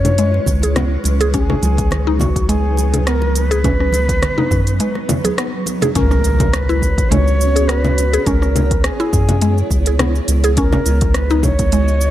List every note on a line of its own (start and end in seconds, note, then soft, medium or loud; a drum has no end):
0.00 0.40 F#2 medium
0.00 1.31 G#3 medium
0.00 1.30 C#4 medium
0.00 5.96 C#4 medium
0.00 1.31 E4 medium
0.00 5.91 B4 medium
0.00 0.76 C#5 loud
0.00 5.97 C#5 medium
0.05 closed hi-hat soft
0.05 low conga medium
0.05 shaker soft
0.18 0.33 G#3 medium
0.18 closed hi-hat medium
0.18 shaker soft
0.34 muted conga soft
0.46 0.97 C#2 medium
0.46 kick medium
0.46 low conga medium
0.46 shaker medium
0.63 0.76 G#4 medium
0.63 closed hi-hat medium
0.63 muted conga medium
0.63 high conga medium
0.63 shaker soft
0.76 0.91 B3 medium
0.76 cross-stick medium
0.76 closed hi-hat soft
0.76 low conga medium
0.76 shaker soft
1.04 1.55 C#2 medium
1.04 closed hi-hat soft
1.04 muted conga medium
1.04 high conga soft
1.04 shaker medium
1.21 1.28 G#4 loud
1.21 closed hi-hat soft
1.21 shaker soft
1.33 5.91 F#3 medium
1.33 5.91 B3 medium
1.33 1.48 C#4 loud
1.33 5.91 D#4 medium
1.33 2.21 G#4 medium
1.33 kick loud
1.33 closed hi-hat medium
1.33 shaker soft
1.50 2.06 C#4 medium
1.50 cross-stick soft
1.50 low conga medium
1.63 4.29 C#2 loud
1.63 closed hi-hat soft
1.63 high conga medium
1.63 shaker medium
1.78 kick loud
1.78 closed hi-hat soft
1.78 shaker soft
1.91 cross-stick medium
1.91 closed hi-hat medium
1.91 low conga medium
1.91 shaker soft
2.07 2.20 D#4 loud
2.19 2.50 F#4 medium
2.19 kick medium
2.19 muted conga medium
2.19 low conga medium
2.19 shaker medium
2.36 kick loud
2.36 closed hi-hat soft
2.36 shaker soft
2.48 2.64 G#3 medium
2.48 3.08 G#4 loud
2.48 closed hi-hat medium
2.48 muted conga medium
2.48 shaker soft
2.77 muted conga medium
2.77 shaker medium
2.94 3.06 G#4 medium
2.94 closed hi-hat medium
2.94 low conga medium
2.94 shaker soft
3.06 3.22 B3 medium
3.06 3.37 A#4 loud
3.06 cross-stick loud
3.06 closed hi-hat soft
3.06 shaker soft
3.22 muted conga medium
3.35 5.38 B4 loud
3.35 closed hi-hat medium
3.35 shaker medium
3.51 3.59 G#4 loud
3.51 closed hi-hat soft
3.51 muted conga soft
3.51 shaker soft
3.64 3.79 C#4 loud
3.64 kick loud
3.64 closed hi-hat medium
3.64 low conga medium
3.64 shaker soft
3.80 4.36 C#4 medium
3.80 cross-stick soft
3.92 closed hi-hat soft
3.92 high conga medium
3.92 shaker medium
4.09 kick loud
4.09 closed hi-hat soft
4.09 shaker soft
4.22 cross-stick loud
4.22 closed hi-hat medium
4.22 low conga medium
4.22 shaker soft
4.38 4.50 D#4 loud
4.38 low conga medium
4.51 4.80 F#2 medium
4.51 kick medium
4.51 muted conga medium
4.51 low conga medium
4.51 shaker medium
4.67 closed hi-hat soft
4.67 shaker soft
4.80 4.95 G#3 medium
4.80 closed hi-hat medium
4.80 shaker soft
4.95 cross-stick soft
4.95 muted conga soft
5.09 closed hi-hat soft
5.09 low conga medium
5.09 shaker medium
5.24 5.37 G#4 medium
5.24 closed hi-hat medium
5.24 muted conga medium
5.24 high conga medium
5.24 shaker soft
5.38 5.53 B3 medium
5.38 cross-stick loud
5.38 closed hi-hat soft
5.38 shaker soft
5.66 closed hi-hat medium
5.66 muted conga medium
5.66 high conga soft
5.66 shaker medium
5.82 5.90 G#4 loud
5.82 closed hi-hat soft
5.82 muted conga soft
5.82 low conga medium
5.82 shaker soft
5.95 7.03 C#2 loud
5.95 12.11 B3 medium
5.95 8.24 C#4 medium
5.95 6.10 C#4 loud
5.95 8.24 F#4 medium
5.95 6.55 A#4 medium
5.95 10.53 C#5 medium
5.95 kick loud
5.95 closed hi-hat medium
5.95 impact medium
5.95 shaker soft
6.11 6.67 C#4 medium
6.11 cross-stick soft
6.11 shaker soft
6.24 closed hi-hat soft
6.24 shaker medium
6.40 kick loud
6.40 closed hi-hat soft
6.40 low conga medium
6.40 shaker soft
6.53 7.11 B4 loud
6.53 cross-stick loud
6.53 closed hi-hat medium
6.53 shaker soft
6.69 6.82 E4 loud
6.69 shaker soft
6.82 kick medium
6.82 shaker medium
6.98 kick loud
6.98 closed hi-hat soft
6.98 shaker soft
7.10 8.18 C#2 loud
7.10 7.26 G#3 medium
7.10 7.69 C#5 loud
7.10 closed hi-hat medium
7.10 low conga medium
7.10 shaker soft
7.28 shaker soft
7.41 shaker medium
7.56 7.68 G#4 medium
7.56 closed hi-hat medium
7.56 shaker soft
7.68 7.84 B3 medium
7.68 8.27 B4 loud
7.68 cross-stick loud
7.68 closed hi-hat soft
7.68 shaker soft
7.85 low conga medium
7.85 shaker soft
7.98 closed hi-hat medium
7.98 shaker medium
8.13 8.21 G#4 loud
8.13 closed hi-hat soft
8.13 shaker soft
8.25 8.91 C#2 medium
8.25 8.40 C#4 loud
8.25 10.55 E4 medium
8.25 10.55 G#4 medium
8.25 8.85 A#4 loud
8.25 kick loud
8.25 closed hi-hat medium
8.25 shaker soft
8.42 8.98 C#4 medium
8.42 cross-stick soft
8.42 shaker soft
8.56 closed hi-hat soft
8.56 low conga medium
8.56 shaker medium
8.71 kick loud
8.71 closed hi-hat soft
8.71 shaker soft
8.83 9.99 G#4 medium
8.83 cross-stick loud
8.83 closed hi-hat medium
8.83 shaker soft
9.00 9.12 E4 loud
9.00 shaker soft
9.13 9.63 F#2 medium
9.13 kick loud
9.13 shaker medium
9.29 closed hi-hat soft
9.29 low conga medium
9.29 shaker soft
9.42 9.57 G#3 medium
9.42 closed hi-hat medium
9.42 shaker soft
9.58 shaker soft
9.71 10.21 C#2 medium
9.71 kick medium
9.71 shaker medium
9.86 9.99 G#4 medium
9.86 closed hi-hat medium
9.86 shaker soft
9.99 10.15 B3 medium
9.99 cross-stick loud
9.99 closed hi-hat soft
9.99 low conga medium
9.99 shaker soft
10.15 shaker soft
10.28 10.78 C#2 medium
10.28 closed hi-hat medium
10.28 shaker medium
10.44 10.51 G#4 loud
10.44 closed hi-hat soft
10.44 shaker soft
10.57 10.71 C#4 loud
10.57 12.11 D#4 medium
10.57 12.11 F#4 medium
10.57 11.16 A#4 medium
10.57 12.11 D#5 medium
10.57 kick loud
10.57 closed hi-hat medium
10.57 shaker soft
10.73 11.29 C#4 medium
10.73 cross-stick soft
10.73 low conga medium
10.73 shaker soft
10.86 12.11 C#2 loud
10.86 closed hi-hat soft
10.86 shaker medium
11.01 kick loud
11.01 closed hi-hat soft
11.01 shaker soft
11.14 11.45 B4 loud
11.14 cross-stick medium
11.14 closed hi-hat medium
11.14 shaker soft
11.30 11.43 D#4 loud
11.30 shaker soft
11.43 12.11 C#5 loud
11.43 kick medium
11.43 low conga medium
11.43 shaker medium
11.59 kick loud
11.59 closed hi-hat soft
11.59 shaker soft
11.72 11.87 G#3 medium
11.72 closed hi-hat medium
11.72 shaker soft
11.88 shaker soft
12.01 shaker medium